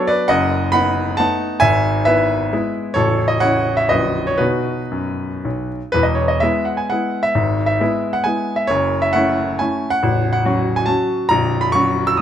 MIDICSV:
0, 0, Header, 1, 2, 480
1, 0, Start_track
1, 0, Key_signature, 4, "major"
1, 0, Tempo, 433839
1, 342, Time_signature, 3, 2, 24, 8
1, 1790, Tempo, 451128
1, 3710, Tempo, 493016
1, 4670, Tempo, 524934
1, 5630, Tempo, 483092
1, 7070, Tempo, 448430
1, 9950, Tempo, 432588
1, 12855, End_track
2, 0, Start_track
2, 0, Title_t, "Grand piano"
2, 0, Program_c, 0, 0
2, 0, Note_on_c, 0, 54, 65
2, 0, Note_on_c, 0, 59, 62
2, 0, Note_on_c, 0, 62, 69
2, 83, Note_on_c, 0, 74, 107
2, 94, Note_on_c, 0, 71, 77
2, 297, Note_off_c, 0, 54, 0
2, 301, Note_off_c, 0, 59, 0
2, 302, Note_off_c, 0, 62, 0
2, 309, Note_on_c, 0, 78, 116
2, 318, Note_off_c, 0, 71, 0
2, 321, Note_on_c, 0, 75, 92
2, 327, Note_on_c, 0, 42, 89
2, 329, Note_off_c, 0, 74, 0
2, 329, Note_on_c, 0, 30, 77
2, 536, Control_c, 0, 64, 127
2, 783, Note_off_c, 0, 75, 0
2, 795, Note_off_c, 0, 78, 0
2, 795, Note_on_c, 0, 83, 122
2, 806, Note_off_c, 0, 42, 0
2, 807, Note_off_c, 0, 30, 0
2, 811, Note_on_c, 0, 78, 93
2, 814, Note_on_c, 0, 59, 61
2, 819, Note_on_c, 0, 63, 64
2, 1275, Note_off_c, 0, 59, 0
2, 1278, Note_off_c, 0, 63, 0
2, 1283, Note_off_c, 0, 78, 0
2, 1295, Note_on_c, 0, 81, 113
2, 1308, Note_on_c, 0, 78, 83
2, 1310, Note_off_c, 0, 83, 0
2, 1320, Note_on_c, 0, 57, 61
2, 1326, Note_on_c, 0, 59, 66
2, 1326, Note_on_c, 0, 63, 73
2, 1336, Control_c, 0, 64, 0
2, 1743, Note_off_c, 0, 57, 0
2, 1746, Note_off_c, 0, 59, 0
2, 1746, Note_off_c, 0, 63, 0
2, 1748, Note_off_c, 0, 78, 0
2, 1768, Note_on_c, 0, 80, 127
2, 1775, Note_off_c, 0, 81, 0
2, 1777, Note_on_c, 0, 76, 95
2, 1786, Note_on_c, 0, 32, 91
2, 1789, Note_on_c, 0, 44, 77
2, 1970, Control_c, 0, 64, 127
2, 2225, Note_off_c, 0, 76, 0
2, 2249, Note_off_c, 0, 32, 0
2, 2251, Note_off_c, 0, 44, 0
2, 2252, Note_on_c, 0, 76, 106
2, 2255, Note_off_c, 0, 80, 0
2, 2264, Note_on_c, 0, 71, 81
2, 2267, Note_on_c, 0, 59, 62
2, 2275, Note_on_c, 0, 64, 71
2, 2713, Note_off_c, 0, 59, 0
2, 2717, Note_off_c, 0, 64, 0
2, 2755, Note_on_c, 0, 56, 65
2, 2755, Note_on_c, 0, 59, 63
2, 2761, Note_on_c, 0, 64, 72
2, 2766, Control_c, 0, 64, 0
2, 2946, Note_off_c, 0, 71, 0
2, 2983, Note_off_c, 0, 76, 0
2, 3179, Note_off_c, 0, 56, 0
2, 3179, Note_off_c, 0, 59, 0
2, 3182, Note_off_c, 0, 64, 0
2, 3195, Note_on_c, 0, 73, 112
2, 3210, Note_on_c, 0, 69, 87
2, 3215, Note_on_c, 0, 33, 85
2, 3217, Note_on_c, 0, 21, 78
2, 3447, Control_c, 0, 64, 127
2, 3549, Note_off_c, 0, 69, 0
2, 3556, Note_on_c, 0, 75, 89
2, 3567, Note_off_c, 0, 73, 0
2, 3690, Note_on_c, 0, 78, 114
2, 3692, Note_off_c, 0, 21, 0
2, 3692, Note_off_c, 0, 33, 0
2, 3697, Note_off_c, 0, 75, 0
2, 3698, Note_on_c, 0, 73, 82
2, 3709, Note_on_c, 0, 61, 58
2, 3709, Note_on_c, 0, 64, 64
2, 4040, Note_off_c, 0, 73, 0
2, 4047, Note_on_c, 0, 76, 93
2, 4062, Note_off_c, 0, 78, 0
2, 4151, Note_off_c, 0, 61, 0
2, 4151, Note_off_c, 0, 64, 0
2, 4166, Note_on_c, 0, 75, 96
2, 4174, Note_on_c, 0, 71, 73
2, 4178, Note_off_c, 0, 76, 0
2, 4182, Note_on_c, 0, 54, 51
2, 4183, Note_on_c, 0, 34, 73
2, 4187, Note_on_c, 0, 22, 62
2, 4187, Note_on_c, 0, 61, 50
2, 4195, Note_on_c, 0, 64, 52
2, 4204, Control_c, 0, 64, 0
2, 4402, Control_c, 0, 64, 127
2, 4515, Note_off_c, 0, 71, 0
2, 4533, Note_on_c, 0, 73, 89
2, 4537, Note_off_c, 0, 75, 0
2, 4627, Note_off_c, 0, 54, 0
2, 4629, Note_off_c, 0, 61, 0
2, 4633, Note_off_c, 0, 64, 0
2, 4638, Note_on_c, 0, 71, 92
2, 4652, Note_off_c, 0, 34, 0
2, 4652, Note_on_c, 0, 66, 74
2, 4654, Note_off_c, 0, 22, 0
2, 4660, Note_on_c, 0, 47, 69
2, 4661, Note_on_c, 0, 59, 55
2, 4662, Note_off_c, 0, 73, 0
2, 4662, Note_on_c, 0, 63, 57
2, 4681, Control_c, 0, 64, 0
2, 4849, Control_c, 0, 64, 127
2, 4996, Note_off_c, 0, 47, 0
2, 5045, Note_off_c, 0, 59, 0
2, 5045, Note_off_c, 0, 63, 0
2, 5133, Note_on_c, 0, 42, 70
2, 5476, Note_off_c, 0, 42, 0
2, 5618, Note_on_c, 0, 35, 62
2, 5638, Control_c, 0, 64, 0
2, 5831, Note_off_c, 0, 66, 0
2, 5864, Note_off_c, 0, 71, 0
2, 5961, Note_off_c, 0, 35, 0
2, 6089, Note_on_c, 0, 71, 109
2, 6109, Note_on_c, 0, 40, 82
2, 6113, Note_on_c, 0, 28, 73
2, 6199, Note_on_c, 0, 75, 74
2, 6215, Note_off_c, 0, 71, 0
2, 6309, Control_c, 0, 64, 127
2, 6316, Note_on_c, 0, 73, 78
2, 6331, Note_off_c, 0, 75, 0
2, 6447, Note_on_c, 0, 75, 81
2, 6452, Note_off_c, 0, 73, 0
2, 6569, Note_on_c, 0, 76, 92
2, 6575, Note_off_c, 0, 40, 0
2, 6577, Note_off_c, 0, 28, 0
2, 6582, Note_off_c, 0, 75, 0
2, 6589, Note_on_c, 0, 56, 67
2, 6591, Note_on_c, 0, 59, 66
2, 6598, Note_on_c, 0, 64, 74
2, 6601, Control_c, 0, 64, 0
2, 6815, Note_on_c, 0, 78, 75
2, 6826, Note_off_c, 0, 76, 0
2, 6935, Note_on_c, 0, 80, 76
2, 6944, Note_off_c, 0, 78, 0
2, 7028, Note_off_c, 0, 56, 0
2, 7029, Note_off_c, 0, 59, 0
2, 7033, Note_off_c, 0, 64, 0
2, 7059, Note_on_c, 0, 78, 90
2, 7060, Note_off_c, 0, 80, 0
2, 7078, Note_on_c, 0, 56, 52
2, 7082, Note_on_c, 0, 59, 52
2, 7087, Note_on_c, 0, 64, 57
2, 7412, Note_on_c, 0, 76, 97
2, 7422, Note_off_c, 0, 78, 0
2, 7507, Note_off_c, 0, 56, 0
2, 7509, Note_off_c, 0, 59, 0
2, 7511, Note_off_c, 0, 64, 0
2, 7541, Note_on_c, 0, 32, 73
2, 7544, Note_on_c, 0, 44, 76
2, 7764, Control_c, 0, 64, 127
2, 7864, Note_off_c, 0, 76, 0
2, 7880, Note_on_c, 0, 76, 94
2, 8013, Note_off_c, 0, 32, 0
2, 8014, Note_off_c, 0, 44, 0
2, 8028, Note_on_c, 0, 56, 66
2, 8035, Note_on_c, 0, 59, 70
2, 8036, Note_on_c, 0, 64, 74
2, 8046, Control_c, 0, 64, 0
2, 8379, Note_on_c, 0, 78, 96
2, 8386, Note_off_c, 0, 76, 0
2, 8475, Note_off_c, 0, 56, 0
2, 8478, Note_off_c, 0, 59, 0
2, 8479, Note_off_c, 0, 64, 0
2, 8493, Note_on_c, 0, 80, 96
2, 8509, Note_off_c, 0, 78, 0
2, 8513, Note_on_c, 0, 56, 51
2, 8516, Note_on_c, 0, 59, 55
2, 8521, Note_on_c, 0, 64, 56
2, 8840, Note_on_c, 0, 76, 83
2, 8858, Note_off_c, 0, 80, 0
2, 8939, Note_off_c, 0, 56, 0
2, 8941, Note_off_c, 0, 59, 0
2, 8944, Note_off_c, 0, 64, 0
2, 8961, Note_on_c, 0, 73, 109
2, 8970, Note_off_c, 0, 76, 0
2, 8983, Note_on_c, 0, 30, 76
2, 8986, Note_on_c, 0, 42, 80
2, 9197, Control_c, 0, 64, 127
2, 9328, Note_off_c, 0, 73, 0
2, 9329, Note_on_c, 0, 76, 91
2, 9446, Note_on_c, 0, 78, 109
2, 9450, Note_off_c, 0, 30, 0
2, 9451, Note_off_c, 0, 42, 0
2, 9459, Note_off_c, 0, 76, 0
2, 9466, Note_on_c, 0, 57, 68
2, 9474, Note_on_c, 0, 61, 73
2, 9479, Note_on_c, 0, 64, 73
2, 9908, Note_off_c, 0, 57, 0
2, 9911, Note_off_c, 0, 61, 0
2, 9914, Note_off_c, 0, 64, 0
2, 9940, Note_on_c, 0, 80, 92
2, 9941, Note_off_c, 0, 78, 0
2, 9953, Note_on_c, 0, 57, 58
2, 9960, Control_c, 0, 64, 0
2, 9960, Note_on_c, 0, 61, 54
2, 9968, Note_on_c, 0, 64, 58
2, 10290, Note_on_c, 0, 78, 106
2, 10298, Note_off_c, 0, 80, 0
2, 10375, Note_off_c, 0, 57, 0
2, 10378, Note_off_c, 0, 61, 0
2, 10382, Note_off_c, 0, 64, 0
2, 10426, Note_on_c, 0, 21, 79
2, 10427, Note_on_c, 0, 33, 85
2, 10595, Control_c, 0, 64, 127
2, 10741, Note_off_c, 0, 78, 0
2, 10757, Note_on_c, 0, 78, 97
2, 10887, Note_off_c, 0, 21, 0
2, 10888, Note_off_c, 0, 33, 0
2, 10899, Note_on_c, 0, 54, 75
2, 10902, Note_on_c, 0, 61, 73
2, 10909, Note_on_c, 0, 66, 79
2, 11242, Note_on_c, 0, 80, 93
2, 11252, Note_off_c, 0, 78, 0
2, 11333, Note_off_c, 0, 54, 0
2, 11335, Note_off_c, 0, 61, 0
2, 11338, Note_off_c, 0, 66, 0
2, 11346, Note_on_c, 0, 81, 98
2, 11368, Note_off_c, 0, 80, 0
2, 11370, Note_on_c, 0, 54, 58
2, 11377, Note_on_c, 0, 61, 53
2, 11383, Note_on_c, 0, 66, 59
2, 11386, Control_c, 0, 64, 0
2, 11796, Note_off_c, 0, 54, 0
2, 11799, Note_off_c, 0, 61, 0
2, 11802, Note_off_c, 0, 66, 0
2, 11825, Note_on_c, 0, 82, 123
2, 11828, Note_off_c, 0, 81, 0
2, 11847, Note_on_c, 0, 22, 83
2, 11848, Note_on_c, 0, 34, 85
2, 12036, Control_c, 0, 64, 127
2, 12182, Note_on_c, 0, 83, 98
2, 12195, Note_off_c, 0, 82, 0
2, 12307, Note_on_c, 0, 85, 120
2, 12319, Note_off_c, 0, 22, 0
2, 12320, Note_off_c, 0, 34, 0
2, 12321, Note_off_c, 0, 83, 0
2, 12332, Note_on_c, 0, 54, 71
2, 12336, Note_on_c, 0, 61, 76
2, 12341, Note_on_c, 0, 66, 81
2, 12692, Note_on_c, 0, 88, 107
2, 12700, Note_off_c, 0, 85, 0
2, 12787, Note_off_c, 0, 54, 0
2, 12789, Note_off_c, 0, 61, 0
2, 12792, Note_off_c, 0, 66, 0
2, 12806, Note_on_c, 0, 87, 86
2, 12821, Note_off_c, 0, 88, 0
2, 12840, Control_c, 0, 64, 0
2, 12855, Note_off_c, 0, 87, 0
2, 12855, End_track
0, 0, End_of_file